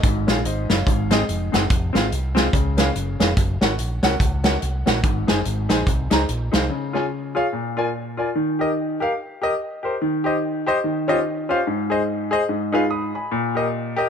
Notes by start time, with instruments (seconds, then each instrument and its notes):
0.03 fingered electric bass G#1, grand piano G#2, kick, closed hi-hat
0.27 fingered electric bass A#1, grand piano C#4 F4 G#4 F5, snare, closed hi-hat
0.45 fingered electric bass G#1, grand piano C5 D#5, closed hi-hat
0.69 fingered electric bass F#1, grand piano C#5 F5, snare, closed hi-hat
0.87 fingered electric bass G#1, grand piano G#2, kick, closed hi-hat
1.11 grand piano C4 D#4 G#4 D#5, snare, closed hi-hat
1.28 fingered electric bass F1, closed hi-hat
1.52 fingered electric bass F#1, grand piano C4 D#4 G#4 F#5, snare, closed hi-hat
1.70 fingered electric bass F1, kick, closed hi-hat
1.93 fingered electric bass G#1, grand piano C4 F4 G#4 F5, snare, closed hi-hat
2.12 fingered electric bass C2, closed hi-hat
2.35 grand piano C4 F4 G#4 F5, snare, closed hi-hat
2.53 fingered electric bass C#2, grand piano C#3, kick, closed hi-hat
2.77 grand piano C#4 G#4 B4 F5, snare, closed hi-hat
2.95 fingered electric bass F#1, closed hi-hat
3.20 fingered electric bass F1, grand piano C#4 G#4 B4 F5, snare, closed hi-hat
3.37 fingered electric bass F#1, kick, closed hi-hat
3.61 fingered electric bass G#1, grand piano C#4 F#4 A#4 F#5, snare, closed hi-hat
3.79 fingered electric bass A#1, closed hi-hat
4.03 fingered electric bass C2, grand piano C#4 F#4 A#4 F#5, snare, closed hi-hat
4.20 fingered electric bass C#2, kick, closed hi-hat
4.44 grand piano C#4 F#4 A#4 F#5, snare, closed hi-hat
4.62 fingered electric bass C2, closed hi-hat
4.86 fingered electric bass A#1, grand piano C#4 F#4 A#4 F#5, snare, closed hi-hat
5.03 fingered electric bass G#1, grand piano G#2, kick, closed hi-hat
5.27 fingered electric bass F#1, grand piano D#4 G#4 C5 G#5, snare, closed hi-hat
5.45 fingered electric bass G#1, closed hi-hat
5.69 fingered electric bass A#1, grand piano D#4 G#4 C5 G#5, snare, closed hi-hat
5.87 fingered electric bass C2, kick, closed hi-hat
6.10 fingered electric bass C#2, grand piano D#4 G#4 C5 A#5, snare, closed hi-hat
6.29 fingered electric bass A#1, closed hi-hat
6.52 fingered electric bass C2, grand piano D#4 G#4 C5 F5, snare, closed hi-hat
6.70 grand piano C#3
6.93 grand piano F4 G#4 C#5 G#5
7.35 grand piano F4 G#4 C#5 F5
7.53 grand piano A#2
7.77 grand piano F4 A#4 D5 G#5
8.17 grand piano F4 A#4 D5 G#5
8.35 grand piano D#3
8.59 grand piano G4 A#4 D#5
9.00 grand piano G4 A#4 F5
9.42 grand piano G4 A#4 D#5
9.83 grand piano G4 A#4 C5
10.02 grand piano D#3
10.24 grand piano G4 C5 D#5
10.66 grand piano G4 C5 D#5
10.84 grand piano D#3
11.08 grand piano C#4 F4 G4 C5 D#5
11.49 grand piano C#4 F4 G4 C5 F5
11.67 grand piano G#2
11.90 grand piano G#4 C5 D#5
12.31 grand piano G#4 C5 D#5
12.49 grand piano G#2
12.72 grand piano D#4 F4 G#4 B4 F5
12.91 grand piano B5 D#6
13.15 grand piano G#5 B5
13.31 grand piano A#2
13.55 grand piano G4 A#4 D#5
13.96 grand piano G4 A#4 D#5